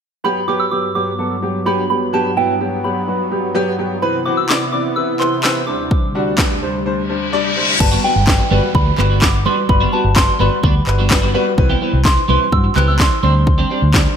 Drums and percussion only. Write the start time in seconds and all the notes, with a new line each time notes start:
4.49 snare, clap
5.20 clap
5.44 snare, clap
5.91 kick
6.38 kick, snare, clap
7.80 kick, crash
8.27 kick, snare, clap
8.75 kick
8.98 clap
9.22 kick, snare, clap
9.69 kick
10.16 kick, snare, clap
10.64 kick
10.87 clap
11.11 kick, snare, clap
11.58 kick
12.05 kick, snare, clap
12.52 kick
12.76 clap
13.00 kick, snare, clap
13.47 kick
13.94 kick, snare, clap